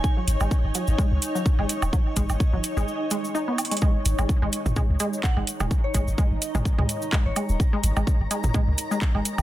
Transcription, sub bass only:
0, 0, Header, 1, 2, 480
1, 0, Start_track
1, 0, Tempo, 472441
1, 41, Time_signature, 4, 2, 24, 8
1, 9571, End_track
2, 0, Start_track
2, 0, Title_t, "Sub bass"
2, 0, Program_c, 0, 38
2, 280, Note_on_c, 0, 32, 100
2, 362, Note_off_c, 0, 32, 0
2, 413, Note_on_c, 0, 32, 99
2, 479, Note_off_c, 0, 32, 0
2, 653, Note_on_c, 0, 32, 91
2, 719, Note_off_c, 0, 32, 0
2, 893, Note_on_c, 0, 32, 105
2, 959, Note_off_c, 0, 32, 0
2, 1133, Note_on_c, 0, 37, 86
2, 1199, Note_off_c, 0, 37, 0
2, 1614, Note_on_c, 0, 32, 83
2, 1679, Note_off_c, 0, 32, 0
2, 1854, Note_on_c, 0, 27, 83
2, 1920, Note_off_c, 0, 27, 0
2, 2200, Note_on_c, 0, 32, 97
2, 2282, Note_off_c, 0, 32, 0
2, 2333, Note_on_c, 0, 32, 99
2, 2399, Note_off_c, 0, 32, 0
2, 2574, Note_on_c, 0, 32, 89
2, 2640, Note_off_c, 0, 32, 0
2, 2814, Note_on_c, 0, 32, 98
2, 2880, Note_off_c, 0, 32, 0
2, 4120, Note_on_c, 0, 32, 92
2, 4202, Note_off_c, 0, 32, 0
2, 4253, Note_on_c, 0, 32, 99
2, 4319, Note_off_c, 0, 32, 0
2, 4494, Note_on_c, 0, 32, 88
2, 4560, Note_off_c, 0, 32, 0
2, 4733, Note_on_c, 0, 32, 106
2, 4799, Note_off_c, 0, 32, 0
2, 4973, Note_on_c, 0, 37, 91
2, 5039, Note_off_c, 0, 37, 0
2, 5453, Note_on_c, 0, 32, 84
2, 5519, Note_off_c, 0, 32, 0
2, 5693, Note_on_c, 0, 27, 89
2, 5759, Note_off_c, 0, 27, 0
2, 6040, Note_on_c, 0, 32, 98
2, 6122, Note_off_c, 0, 32, 0
2, 6172, Note_on_c, 0, 32, 103
2, 6239, Note_off_c, 0, 32, 0
2, 6412, Note_on_c, 0, 32, 86
2, 6479, Note_off_c, 0, 32, 0
2, 6653, Note_on_c, 0, 32, 103
2, 6719, Note_off_c, 0, 32, 0
2, 6893, Note_on_c, 0, 37, 90
2, 6959, Note_off_c, 0, 37, 0
2, 7374, Note_on_c, 0, 32, 81
2, 7440, Note_off_c, 0, 32, 0
2, 7614, Note_on_c, 0, 27, 81
2, 7679, Note_off_c, 0, 27, 0
2, 7961, Note_on_c, 0, 32, 93
2, 8043, Note_off_c, 0, 32, 0
2, 8094, Note_on_c, 0, 32, 100
2, 8159, Note_off_c, 0, 32, 0
2, 8334, Note_on_c, 0, 32, 91
2, 8399, Note_off_c, 0, 32, 0
2, 8574, Note_on_c, 0, 32, 101
2, 8639, Note_off_c, 0, 32, 0
2, 8814, Note_on_c, 0, 37, 89
2, 8880, Note_off_c, 0, 37, 0
2, 9293, Note_on_c, 0, 32, 86
2, 9359, Note_off_c, 0, 32, 0
2, 9534, Note_on_c, 0, 27, 83
2, 9571, Note_off_c, 0, 27, 0
2, 9571, End_track
0, 0, End_of_file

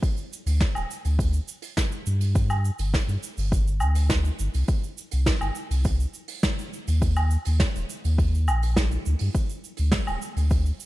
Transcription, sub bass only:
0, 0, Header, 1, 2, 480
1, 0, Start_track
1, 0, Tempo, 582524
1, 21, Time_signature, 4, 2, 24, 8
1, 8947, End_track
2, 0, Start_track
2, 0, Title_t, "Sub bass"
2, 0, Program_c, 0, 38
2, 380, Note_on_c, 0, 38, 96
2, 531, Note_off_c, 0, 38, 0
2, 626, Note_on_c, 0, 26, 83
2, 699, Note_off_c, 0, 26, 0
2, 866, Note_on_c, 0, 38, 90
2, 1152, Note_off_c, 0, 38, 0
2, 1703, Note_on_c, 0, 43, 83
2, 2231, Note_off_c, 0, 43, 0
2, 2300, Note_on_c, 0, 31, 90
2, 2451, Note_off_c, 0, 31, 0
2, 2539, Note_on_c, 0, 43, 79
2, 2615, Note_off_c, 0, 43, 0
2, 2782, Note_on_c, 0, 31, 92
2, 3139, Note_on_c, 0, 38, 97
2, 3151, Note_off_c, 0, 31, 0
2, 3549, Note_off_c, 0, 38, 0
2, 3622, Note_on_c, 0, 31, 95
2, 3698, Note_off_c, 0, 31, 0
2, 3746, Note_on_c, 0, 36, 94
2, 3819, Note_off_c, 0, 36, 0
2, 4226, Note_on_c, 0, 36, 92
2, 4374, Note_off_c, 0, 36, 0
2, 4462, Note_on_c, 0, 31, 83
2, 4537, Note_off_c, 0, 31, 0
2, 4701, Note_on_c, 0, 36, 93
2, 4990, Note_off_c, 0, 36, 0
2, 5667, Note_on_c, 0, 39, 101
2, 6073, Note_off_c, 0, 39, 0
2, 6152, Note_on_c, 0, 39, 91
2, 6297, Note_off_c, 0, 39, 0
2, 6391, Note_on_c, 0, 27, 84
2, 6462, Note_off_c, 0, 27, 0
2, 6631, Note_on_c, 0, 39, 94
2, 6993, Note_on_c, 0, 34, 92
2, 7005, Note_off_c, 0, 39, 0
2, 7396, Note_off_c, 0, 34, 0
2, 7470, Note_on_c, 0, 38, 104
2, 7542, Note_off_c, 0, 38, 0
2, 7590, Note_on_c, 0, 43, 87
2, 7661, Note_off_c, 0, 43, 0
2, 8067, Note_on_c, 0, 38, 89
2, 8215, Note_off_c, 0, 38, 0
2, 8306, Note_on_c, 0, 26, 85
2, 8379, Note_off_c, 0, 26, 0
2, 8540, Note_on_c, 0, 38, 89
2, 8830, Note_off_c, 0, 38, 0
2, 8947, End_track
0, 0, End_of_file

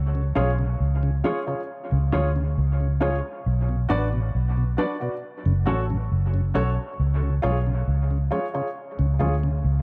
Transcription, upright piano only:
0, 0, Header, 1, 2, 480
1, 0, Start_track
1, 0, Tempo, 883913
1, 1873, Time_signature, 4, 2, 24, 8
1, 5333, End_track
2, 0, Start_track
2, 0, Title_t, "Upright piano"
2, 0, Program_c, 0, 0
2, 191, Note_on_c, 0, 65, 90
2, 194, Note_on_c, 0, 68, 84
2, 197, Note_on_c, 0, 73, 94
2, 266, Note_off_c, 0, 65, 0
2, 267, Note_off_c, 0, 68, 0
2, 269, Note_off_c, 0, 73, 0
2, 672, Note_on_c, 0, 65, 77
2, 675, Note_on_c, 0, 68, 75
2, 679, Note_on_c, 0, 73, 90
2, 746, Note_off_c, 0, 65, 0
2, 748, Note_off_c, 0, 68, 0
2, 749, Note_off_c, 0, 73, 0
2, 795, Note_on_c, 0, 65, 73
2, 798, Note_on_c, 0, 68, 59
2, 802, Note_on_c, 0, 73, 77
2, 865, Note_off_c, 0, 65, 0
2, 866, Note_off_c, 0, 68, 0
2, 868, Note_off_c, 0, 73, 0
2, 1153, Note_on_c, 0, 65, 78
2, 1156, Note_on_c, 0, 68, 80
2, 1160, Note_on_c, 0, 73, 89
2, 1226, Note_off_c, 0, 65, 0
2, 1228, Note_off_c, 0, 68, 0
2, 1230, Note_off_c, 0, 73, 0
2, 1631, Note_on_c, 0, 65, 86
2, 1635, Note_on_c, 0, 68, 76
2, 1638, Note_on_c, 0, 73, 97
2, 1706, Note_off_c, 0, 65, 0
2, 1708, Note_off_c, 0, 68, 0
2, 1709, Note_off_c, 0, 73, 0
2, 2110, Note_on_c, 0, 66, 96
2, 2114, Note_on_c, 0, 71, 89
2, 2117, Note_on_c, 0, 74, 102
2, 2185, Note_off_c, 0, 66, 0
2, 2187, Note_off_c, 0, 71, 0
2, 2189, Note_off_c, 0, 74, 0
2, 2590, Note_on_c, 0, 66, 75
2, 2594, Note_on_c, 0, 71, 76
2, 2597, Note_on_c, 0, 74, 93
2, 2665, Note_off_c, 0, 66, 0
2, 2667, Note_off_c, 0, 71, 0
2, 2669, Note_off_c, 0, 74, 0
2, 2714, Note_on_c, 0, 66, 67
2, 2717, Note_on_c, 0, 71, 58
2, 2720, Note_on_c, 0, 74, 72
2, 2784, Note_off_c, 0, 66, 0
2, 2786, Note_off_c, 0, 71, 0
2, 2788, Note_off_c, 0, 74, 0
2, 3071, Note_on_c, 0, 66, 87
2, 3075, Note_on_c, 0, 69, 76
2, 3078, Note_on_c, 0, 73, 77
2, 3146, Note_off_c, 0, 66, 0
2, 3148, Note_off_c, 0, 69, 0
2, 3150, Note_off_c, 0, 73, 0
2, 3552, Note_on_c, 0, 66, 86
2, 3556, Note_on_c, 0, 69, 74
2, 3558, Note_on_c, 0, 73, 105
2, 3626, Note_off_c, 0, 66, 0
2, 3628, Note_off_c, 0, 69, 0
2, 3630, Note_off_c, 0, 73, 0
2, 4030, Note_on_c, 0, 65, 93
2, 4033, Note_on_c, 0, 68, 90
2, 4037, Note_on_c, 0, 73, 95
2, 4106, Note_off_c, 0, 65, 0
2, 4107, Note_off_c, 0, 68, 0
2, 4109, Note_off_c, 0, 73, 0
2, 4511, Note_on_c, 0, 65, 83
2, 4514, Note_on_c, 0, 68, 70
2, 4516, Note_on_c, 0, 73, 94
2, 4586, Note_off_c, 0, 65, 0
2, 4587, Note_off_c, 0, 68, 0
2, 4589, Note_off_c, 0, 73, 0
2, 4636, Note_on_c, 0, 65, 68
2, 4639, Note_on_c, 0, 68, 61
2, 4641, Note_on_c, 0, 73, 79
2, 4706, Note_off_c, 0, 65, 0
2, 4707, Note_off_c, 0, 68, 0
2, 4708, Note_off_c, 0, 73, 0
2, 4992, Note_on_c, 0, 65, 84
2, 4995, Note_on_c, 0, 68, 80
2, 4999, Note_on_c, 0, 73, 77
2, 5067, Note_off_c, 0, 65, 0
2, 5068, Note_off_c, 0, 68, 0
2, 5070, Note_off_c, 0, 73, 0
2, 5333, End_track
0, 0, End_of_file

